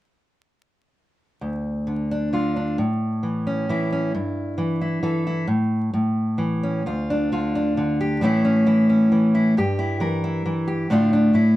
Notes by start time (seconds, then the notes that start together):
1.41 D2
1.87 D3
2.11 D4
2.33 D3 F4
2.56 D4
2.78 A2
3.23 E3
3.47 C#4
3.69 E3 E4
3.92 C#4
4.14 G2
4.58 E3
4.82 E4
5.03 E3 A4
5.27 E4
5.47 A2
5.93 A2
6.38 E3
6.63 C#4
6.86 D2 F4
7.10 D4
7.32 D3 F4
7.55 D4
7.77 D3
8.01 G4
8.21 A2 E3 A3 C#4 E4
8.45 C#4
8.66 E3 E4
8.89 C#4
9.12 E3
9.35 E4
9.57 G2 G4
9.79 E4
10.00 E3 A#4
10.24 E4
10.46 E3
10.68 G4
10.90 A2 D3 A3 D4 F4
11.13 D4
11.33 A2 E4